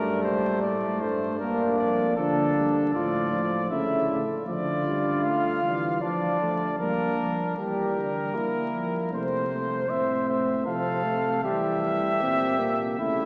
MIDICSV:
0, 0, Header, 1, 5, 480
1, 0, Start_track
1, 0, Key_signature, -2, "minor"
1, 0, Tempo, 769231
1, 1355, Time_signature, 3, 2, 24, 8
1, 3269, Tempo, 776197
1, 8226, End_track
2, 0, Start_track
2, 0, Title_t, "Trumpet"
2, 0, Program_c, 0, 56
2, 0, Note_on_c, 0, 70, 77
2, 139, Note_off_c, 0, 70, 0
2, 143, Note_on_c, 0, 72, 72
2, 381, Note_off_c, 0, 72, 0
2, 385, Note_on_c, 0, 74, 65
2, 629, Note_on_c, 0, 72, 69
2, 638, Note_off_c, 0, 74, 0
2, 867, Note_off_c, 0, 72, 0
2, 871, Note_on_c, 0, 70, 72
2, 1105, Note_off_c, 0, 70, 0
2, 1109, Note_on_c, 0, 74, 70
2, 1347, Note_off_c, 0, 74, 0
2, 1350, Note_on_c, 0, 69, 78
2, 1822, Note_off_c, 0, 69, 0
2, 1830, Note_on_c, 0, 74, 69
2, 2297, Note_off_c, 0, 74, 0
2, 2314, Note_on_c, 0, 76, 74
2, 2616, Note_off_c, 0, 76, 0
2, 2785, Note_on_c, 0, 74, 77
2, 3243, Note_off_c, 0, 74, 0
2, 3271, Note_on_c, 0, 77, 70
2, 3742, Note_off_c, 0, 77, 0
2, 3748, Note_on_c, 0, 74, 70
2, 4225, Note_off_c, 0, 74, 0
2, 4229, Note_on_c, 0, 70, 69
2, 4692, Note_off_c, 0, 70, 0
2, 4711, Note_on_c, 0, 70, 68
2, 5656, Note_off_c, 0, 70, 0
2, 5677, Note_on_c, 0, 72, 67
2, 6150, Note_on_c, 0, 76, 68
2, 6159, Note_off_c, 0, 72, 0
2, 6386, Note_off_c, 0, 76, 0
2, 6389, Note_on_c, 0, 76, 69
2, 6620, Note_off_c, 0, 76, 0
2, 6624, Note_on_c, 0, 77, 75
2, 7094, Note_off_c, 0, 77, 0
2, 7100, Note_on_c, 0, 76, 94
2, 7959, Note_off_c, 0, 76, 0
2, 8064, Note_on_c, 0, 76, 74
2, 8226, Note_off_c, 0, 76, 0
2, 8226, End_track
3, 0, Start_track
3, 0, Title_t, "Flugelhorn"
3, 0, Program_c, 1, 56
3, 0, Note_on_c, 1, 57, 69
3, 861, Note_off_c, 1, 57, 0
3, 865, Note_on_c, 1, 62, 67
3, 1341, Note_off_c, 1, 62, 0
3, 1360, Note_on_c, 1, 62, 79
3, 1826, Note_off_c, 1, 62, 0
3, 1838, Note_on_c, 1, 65, 68
3, 2210, Note_off_c, 1, 65, 0
3, 2316, Note_on_c, 1, 64, 66
3, 2616, Note_off_c, 1, 64, 0
3, 2794, Note_on_c, 1, 65, 84
3, 3755, Note_on_c, 1, 62, 63
3, 3765, Note_off_c, 1, 65, 0
3, 4231, Note_off_c, 1, 62, 0
3, 4235, Note_on_c, 1, 62, 59
3, 4695, Note_off_c, 1, 62, 0
3, 4718, Note_on_c, 1, 67, 59
3, 5191, Note_on_c, 1, 64, 55
3, 5201, Note_off_c, 1, 67, 0
3, 5675, Note_off_c, 1, 64, 0
3, 5679, Note_on_c, 1, 72, 75
3, 6521, Note_off_c, 1, 72, 0
3, 6626, Note_on_c, 1, 69, 79
3, 7095, Note_off_c, 1, 69, 0
3, 7101, Note_on_c, 1, 67, 71
3, 7338, Note_off_c, 1, 67, 0
3, 7341, Note_on_c, 1, 67, 81
3, 8048, Note_off_c, 1, 67, 0
3, 8064, Note_on_c, 1, 64, 71
3, 8226, Note_off_c, 1, 64, 0
3, 8226, End_track
4, 0, Start_track
4, 0, Title_t, "Euphonium"
4, 0, Program_c, 2, 58
4, 0, Note_on_c, 2, 55, 92
4, 619, Note_off_c, 2, 55, 0
4, 637, Note_on_c, 2, 57, 80
4, 871, Note_off_c, 2, 57, 0
4, 883, Note_on_c, 2, 58, 97
4, 1350, Note_off_c, 2, 58, 0
4, 1360, Note_on_c, 2, 53, 79
4, 1592, Note_off_c, 2, 53, 0
4, 1599, Note_on_c, 2, 55, 70
4, 1831, Note_off_c, 2, 55, 0
4, 1838, Note_on_c, 2, 53, 69
4, 2069, Note_off_c, 2, 53, 0
4, 2073, Note_on_c, 2, 53, 70
4, 2305, Note_off_c, 2, 53, 0
4, 2313, Note_on_c, 2, 57, 72
4, 2545, Note_off_c, 2, 57, 0
4, 2557, Note_on_c, 2, 57, 73
4, 2788, Note_off_c, 2, 57, 0
4, 2796, Note_on_c, 2, 53, 66
4, 3028, Note_off_c, 2, 53, 0
4, 3036, Note_on_c, 2, 55, 65
4, 3273, Note_on_c, 2, 57, 67
4, 3283, Note_off_c, 2, 55, 0
4, 3511, Note_off_c, 2, 57, 0
4, 3515, Note_on_c, 2, 55, 62
4, 3751, Note_on_c, 2, 53, 71
4, 3760, Note_off_c, 2, 55, 0
4, 3987, Note_off_c, 2, 53, 0
4, 3990, Note_on_c, 2, 57, 63
4, 4230, Note_off_c, 2, 57, 0
4, 4233, Note_on_c, 2, 58, 73
4, 4612, Note_off_c, 2, 58, 0
4, 4717, Note_on_c, 2, 55, 70
4, 5197, Note_on_c, 2, 58, 73
4, 5206, Note_off_c, 2, 55, 0
4, 5665, Note_off_c, 2, 58, 0
4, 5668, Note_on_c, 2, 57, 60
4, 5908, Note_off_c, 2, 57, 0
4, 5910, Note_on_c, 2, 57, 63
4, 6140, Note_off_c, 2, 57, 0
4, 6144, Note_on_c, 2, 60, 65
4, 6624, Note_on_c, 2, 53, 73
4, 6634, Note_off_c, 2, 60, 0
4, 6863, Note_on_c, 2, 57, 75
4, 6872, Note_off_c, 2, 53, 0
4, 7097, Note_off_c, 2, 57, 0
4, 7101, Note_on_c, 2, 55, 79
4, 7580, Note_on_c, 2, 60, 80
4, 7590, Note_off_c, 2, 55, 0
4, 7819, Note_on_c, 2, 58, 73
4, 7828, Note_off_c, 2, 60, 0
4, 8060, Note_off_c, 2, 58, 0
4, 8064, Note_on_c, 2, 57, 78
4, 8226, Note_off_c, 2, 57, 0
4, 8226, End_track
5, 0, Start_track
5, 0, Title_t, "Tuba"
5, 0, Program_c, 3, 58
5, 0, Note_on_c, 3, 43, 70
5, 146, Note_off_c, 3, 43, 0
5, 151, Note_on_c, 3, 46, 65
5, 393, Note_on_c, 3, 45, 69
5, 402, Note_off_c, 3, 46, 0
5, 632, Note_on_c, 3, 43, 68
5, 641, Note_off_c, 3, 45, 0
5, 873, Note_off_c, 3, 43, 0
5, 879, Note_on_c, 3, 43, 64
5, 1112, Note_off_c, 3, 43, 0
5, 1119, Note_on_c, 3, 41, 72
5, 1352, Note_off_c, 3, 41, 0
5, 1364, Note_on_c, 3, 50, 97
5, 1829, Note_off_c, 3, 50, 0
5, 1841, Note_on_c, 3, 45, 87
5, 2303, Note_off_c, 3, 45, 0
5, 2316, Note_on_c, 3, 49, 87
5, 2617, Note_off_c, 3, 49, 0
5, 2792, Note_on_c, 3, 50, 83
5, 3487, Note_off_c, 3, 50, 0
5, 3512, Note_on_c, 3, 52, 79
5, 3753, Note_on_c, 3, 53, 86
5, 3762, Note_off_c, 3, 52, 0
5, 4234, Note_off_c, 3, 53, 0
5, 4238, Note_on_c, 3, 55, 62
5, 4462, Note_off_c, 3, 55, 0
5, 4475, Note_on_c, 3, 53, 62
5, 4711, Note_off_c, 3, 53, 0
5, 4715, Note_on_c, 3, 52, 60
5, 4951, Note_off_c, 3, 52, 0
5, 4954, Note_on_c, 3, 50, 56
5, 5193, Note_off_c, 3, 50, 0
5, 5196, Note_on_c, 3, 55, 57
5, 5438, Note_on_c, 3, 53, 64
5, 5448, Note_off_c, 3, 55, 0
5, 5674, Note_on_c, 3, 48, 75
5, 5683, Note_off_c, 3, 53, 0
5, 6146, Note_off_c, 3, 48, 0
5, 6150, Note_on_c, 3, 45, 70
5, 6618, Note_off_c, 3, 45, 0
5, 6626, Note_on_c, 3, 48, 79
5, 7095, Note_off_c, 3, 48, 0
5, 7102, Note_on_c, 3, 52, 87
5, 7479, Note_off_c, 3, 52, 0
5, 7584, Note_on_c, 3, 46, 89
5, 8055, Note_off_c, 3, 46, 0
5, 8059, Note_on_c, 3, 49, 78
5, 8226, Note_off_c, 3, 49, 0
5, 8226, End_track
0, 0, End_of_file